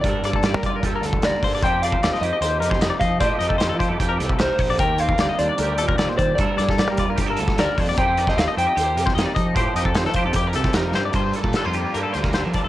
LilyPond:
<<
  \new Staff \with { instrumentName = "Clean electric guitar" } { \time 4/4 \key g \minor \tempo 4 = 151 d''2 r4 d''4 | g''8 f''4 ees''2 f''8 | ees''2 r4 c''4 | g''8 f''4 d''2 c''8 |
d''2 r4 d''4 | g''8. ees''16 f''8 g''2~ g''8~ | g''2. r4 | r1 | }
  \new Staff \with { instrumentName = "Clean electric guitar" } { \time 4/4 \key g \minor bes'8 d''16 a'16 d''16 bes'16 d''16 bes'16 g'16 bes'16 a'8 bes'8 c''16 d''16 | c''8 d''16 c''16 d''16 ees''16 c''16 ees''16 c''8 bes'16 c''16 ees''16 d''16 ees''8 | c''8 ees''16 a'16 c''16 a'16 c''16 a'16 g'16 bes'16 a'8 bes'8 c''16 d''16 | bes'8 c''16 bes'16 d''16 ees''16 c''16 d''16 bes'8 a'16 bes'16 d''16 c''16 d''8 |
bes'8 d''16 a'16 d''16 bes'16 d''16 bes'16 g'16 bes'16 a'8 bes'8 c''16 d''16 | c''8 d''16 c''16 d''16 ees''16 c''16 ees''16 c''8 bes'16 c''16 ees''16 d''16 ees''8 | c''8 ees''16 a'16 c''16 a'16 c''16 a'16 g'16 bes'16 a'8 bes'8 c''16 d''16 | c''8 a'8 a'16 c''16 g'8 bes'16 a'16 c''16 bes'16 c''16 bes'16 d''16 a'16 | }
  \new Staff \with { instrumentName = "Clean electric guitar" } { \time 4/4 \key g \minor << { <d' a'>8 bes4 f'8 a'4 bes4 | <c' ees' g'>8 ees'4 g'8 g'4 ees'4 | g'8 ees'4 g'8 g'4 ees'4 | g'8 c'4 d'8 g'4 c'4 |
a'8 bes4 f'8 g'16 a'8. bes4 | <c' ees' g'>8 ees'4 g'8 g'4 ees'4 | g'8 ees'4 g'8 g'4 ees'4 | f'8 a'8 d'16 f'16 bes8 g'8 f'8 a'8 f'8 | } \\ { g,4 g4. d4. | f4 c'4. c4. | f4 c'4. c4. | ees4 g4. bes,4. |
g,4 g4. d4. | f4 c'4. c4. | f4 c'4. c4. | g,4 g4. d4. | } >> }
  \new Staff \with { instrumentName = "Overdriven electric guitar" } { \clef bass \time 4/4 \key g \minor r1 | r1 | r1 | r1 |
r1 | r1 | r1 | <g, d g bes d'>8 <g bes d'>8 <g, d g bes d'>8 <g bes d'>8 <d g bes d'>8 <g, d g bes d'>8 <d g bes d'>8 <g bes d'>8 | }
  \new Staff \with { instrumentName = "Fingered electric bass" } { \clef bass \time 4/4 \key g \minor g,16 r16 g,8. g8 g,16 g,8 d,8 d,16 r16 g,8 | f,4 ees,16 r16 f,16 r16 ees,8 f,8 f,16 r16 f8 | a,16 r16 f,8. f8 f,16 f,8 c,8 c,16 r16 bes,,8 | ees,4 d,16 r16 ees,16 r16 d,8 ees,8 ees,16 r16 ees8 |
g,16 r16 g,8. g8 g,16 g,8 d,8 d,16 r16 f,8 | f,4 ees,16 r16 f,16 r16 ees,8 f,8 f,16 r16 f8 | a,16 r16 f,8. f8 f,16 f,8 c,8 f,8 g,8 | g,8 r16 bes,16 r16 f,8 r16 g,16 r16 d,8. f16 r16 f,16 | }
  \new DrumStaff \with { instrumentName = "Drums" } \drummode { \time 4/4 <hh bd>8 hh16 bd16 <hh sn>8 <hh bd>8 <hh bd>8 hh16 bd16 <hh sn>8 <hho bd>8 | <hh bd>8 hh16 bd16 <hh sn>16 sn16 hh8 hh8 hh16 <bd sn>16 <hh sn>8 <hh bd>8 | <hh bd>8 hh16 bd16 <hh sn>8 <hh bd>8 <hh bd>8 hh16 bd16 <hh sn>8 <hho bd>8 | <hh bd>8 hh16 bd16 <hh sn>8 hh8 hh8 hh16 bd16 <hh sn>8 <hh bd>8 |
<hh bd>8 hh16 <bd sn>16 <hh sn>8 <hh bd>8 <hh bd>8 hh16 <bd sn>16 <hh sn>8 <hho bd>8 | <hh bd>8 hh16 <bd sn>16 <hh sn>8 hh8 hh8 hh16 <bd sn>16 <hh sn>8 <hh bd>8 | <hh bd>8 hh16 bd16 <hh sn>16 sn16 <hh bd>8 <hh bd>8 hh16 <bd sn>16 <hh sn>8 sn8 | <hh bd>8 hh16 bd16 <hh sn>8 hh8 hh8 hh16 <bd sn>16 <hh sn>8 <hh bd>8 | }
>>